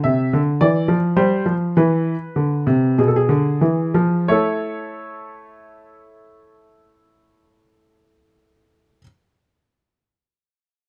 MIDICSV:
0, 0, Header, 1, 2, 480
1, 0, Start_track
1, 0, Tempo, 1142857
1, 736, Tempo, 1226994
1, 1216, Tempo, 1304348
1, 1696, Tempo, 1345291
1, 1697, Time_signature, 4, 2, 24, 8
1, 4050, End_track
2, 0, Start_track
2, 0, Title_t, "Grand piano"
2, 0, Program_c, 0, 0
2, 15, Note_on_c, 0, 76, 84
2, 18, Note_on_c, 0, 48, 79
2, 130, Note_off_c, 0, 48, 0
2, 140, Note_on_c, 0, 50, 87
2, 160, Note_off_c, 0, 76, 0
2, 250, Note_off_c, 0, 50, 0
2, 255, Note_on_c, 0, 74, 91
2, 256, Note_on_c, 0, 52, 79
2, 369, Note_off_c, 0, 52, 0
2, 370, Note_on_c, 0, 53, 82
2, 402, Note_off_c, 0, 74, 0
2, 487, Note_off_c, 0, 53, 0
2, 489, Note_on_c, 0, 55, 89
2, 490, Note_on_c, 0, 72, 88
2, 608, Note_off_c, 0, 55, 0
2, 612, Note_on_c, 0, 53, 73
2, 643, Note_off_c, 0, 72, 0
2, 733, Note_off_c, 0, 53, 0
2, 742, Note_on_c, 0, 52, 90
2, 744, Note_on_c, 0, 71, 79
2, 887, Note_off_c, 0, 52, 0
2, 973, Note_on_c, 0, 50, 77
2, 1091, Note_off_c, 0, 50, 0
2, 1094, Note_on_c, 0, 48, 92
2, 1206, Note_off_c, 0, 71, 0
2, 1213, Note_off_c, 0, 48, 0
2, 1217, Note_on_c, 0, 47, 73
2, 1218, Note_on_c, 0, 68, 76
2, 1251, Note_off_c, 0, 68, 0
2, 1253, Note_on_c, 0, 69, 67
2, 1283, Note_on_c, 0, 68, 79
2, 1286, Note_off_c, 0, 69, 0
2, 1330, Note_off_c, 0, 47, 0
2, 1330, Note_on_c, 0, 50, 84
2, 1447, Note_off_c, 0, 50, 0
2, 1449, Note_on_c, 0, 52, 84
2, 1568, Note_off_c, 0, 52, 0
2, 1571, Note_on_c, 0, 53, 85
2, 1683, Note_off_c, 0, 68, 0
2, 1692, Note_off_c, 0, 53, 0
2, 1696, Note_on_c, 0, 73, 86
2, 1697, Note_on_c, 0, 57, 83
2, 1707, Note_on_c, 0, 64, 69
2, 1708, Note_on_c, 0, 69, 78
2, 3373, Note_off_c, 0, 73, 0
2, 3374, Note_off_c, 0, 57, 0
2, 3384, Note_off_c, 0, 64, 0
2, 3384, Note_off_c, 0, 69, 0
2, 4050, End_track
0, 0, End_of_file